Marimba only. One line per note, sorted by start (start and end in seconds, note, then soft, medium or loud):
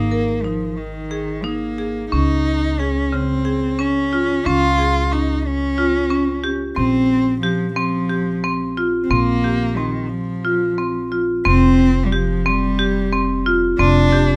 0.11 0.30 A#4 medium
0.44 0.82 D#4 medium
1.11 1.30 G#4 medium
1.44 1.63 D#4 medium
1.78 1.98 G#4 medium
2.12 2.50 C#4 medium
2.80 2.99 G#4 medium
3.12 3.32 C#3 medium
3.45 3.64 G#4 medium
3.79 3.98 C#4 medium
4.13 4.32 F4 medium
4.46 4.65 C#4 medium
4.78 4.97 G#4 medium
5.12 5.49 C#4 medium
5.78 5.97 F4 medium
6.11 6.30 C#4 medium
6.44 6.63 G4 medium
6.76 7.15 C4 medium
7.43 7.62 G4 medium
7.76 7.95 C4 medium
8.09 8.29 G4 medium
8.44 8.63 C4 medium
8.77 8.96 F4 medium
9.10 9.29 C4 medium
9.44 9.63 G4 medium
9.77 10.15 C4 medium
10.45 10.64 F4 medium
10.78 10.97 C4 medium
11.12 11.31 F4 medium
11.45 11.84 C4 medium
12.12 12.32 G4 medium
12.46 12.65 C4 medium
12.79 12.98 G4 medium
13.13 13.32 C4 medium
13.46 13.65 F4 medium
13.79 13.98 C4 medium
14.13 14.31 G4 medium